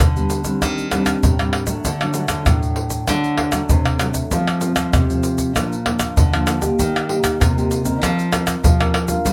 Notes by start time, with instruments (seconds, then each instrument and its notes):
0.00 nylon-string guitar D3, pandeiro, tamborim, shaker, surdo
0.16 nylon-string guitar G3 B3 D4, pandeiro, shaker
0.30 pandeiro, shaker
0.44 nylon-string guitar G3 C4 D4, pandeiro, shaker, surdo
0.62 nylon-string guitar D#3, pandeiro, tamborim, shaker, surdo
0.78 pandeiro, shaker
0.91 nylon-string guitar G3 C4 D4, pandeiro, tamborim, shaker, surdo
1.06 pandeiro, tamborim, shaker, surdo
1.23 nylon-string guitar A2 D#3, pandeiro, shaker, surdo
1.39 nylon-string guitar G3 C4 D4, pandeiro, tamborim, shaker
1.53 pandeiro, tamborim
1.67 nylon-string guitar F#3 A3 D4, pandeiro, shaker, surdo
1.85 nylon-string guitar D3, pandeiro, shaker, surdo
2.01 nylon-string guitar F#3 A3 D4, pandeiro, tamborim, shaker
2.14 nylon-string guitar F#3 A3 D4, pandeiro, shaker
2.28 nylon-string guitar D3, pandeiro, tamborim, shaker, surdo
2.46 nylon-string guitar A2 F#3 A3 D4, pandeiro, tamborim, shaker, surdo
2.63 pandeiro, shaker
2.76 pandeiro
2.90 pandeiro, shaker, surdo
3.08 nylon-string guitar D3 F#3 A3 D4, pandeiro, tamborim, shaker, surdo
3.24 pandeiro, shaker
3.38 pandeiro, tamborim, surdo
3.52 nylon-string guitar F#3 A3 D4, pandeiro, tamborim, shaker, surdo
3.69 nylon-string guitar A2 C3, pandeiro, shaker, surdo
3.85 pandeiro, tamborim, shaker
3.99 nylon-string guitar F#3 A3 D4, pandeiro, tamborim, shaker
4.14 pandeiro, shaker, surdo
4.31 nylon-string guitar F2 F3 A3 C4, pandeiro, shaker, surdo
4.47 pandeiro, tamborim, shaker
4.61 nylon-string guitar F3 A3 C4, pandeiro, shaker
4.76 nylon-string guitar F3, pandeiro, tamborim, shaker, surdo
4.93 nylon-string guitar C3, pandeiro, tamborim, shaker, surdo
5.10 nylon-string guitar F3 A3 C4, pandeiro, shaker
5.23 pandeiro, shaker
5.38 pandeiro, shaker, surdo
5.56 nylon-string guitar A#2 F3 A#3 D4, pandeiro, tamborim, shaker, surdo
5.72 pandeiro, shaker
5.85 nylon-string guitar F3 A#3 D4, pandeiro, tamborim, surdo
5.99 pandeiro, tamborim, shaker, surdo
6.17 nylon-string guitar F2 D3, pandeiro, shaker, surdo
6.33 nylon-string guitar F3 A#3 D4, pandeiro, tamborim, shaker
6.47 pandeiro, tamborim, shaker
6.61 nylon-string guitar A#3 D#4 G4, pandeiro, shaker, surdo
6.79 nylon-string guitar D#3, pandeiro, shaker, surdo
6.96 pandeiro, tamborim, shaker
7.08 nylon-string guitar A#3 D#4 G4, pandeiro
7.23 nylon-string guitar D#3, pandeiro, tamborim, shaker, surdo
7.40 nylon-string guitar A#2 C3, pandeiro, tamborim, shaker, surdo
7.57 nylon-string guitar A#3 D#4 G4, pandeiro, shaker
7.71 pandeiro, shaker
7.84 nylon-string guitar C4 D#4 A#4, pandeiro, shaker, surdo
8.03 nylon-string guitar F3, pandeiro, tamborim, shaker, surdo
8.19 pandeiro, shaker
8.32 nylon-string guitar C4 D#4 A#4, pandeiro, tamborim, shaker, surdo
8.47 pandeiro, tamborim, shaker, surdo
8.63 nylon-string guitar C3 F3, pandeiro, shaker, surdo
8.80 nylon-string guitar C4 D#4 A#4, pandeiro, tamborim, shaker
8.94 pandeiro, tamborim
9.08 nylon-string guitar D4 F4 A#4, pandeiro, shaker, surdo
9.25 nylon-string guitar G3, pandeiro, shaker, surdo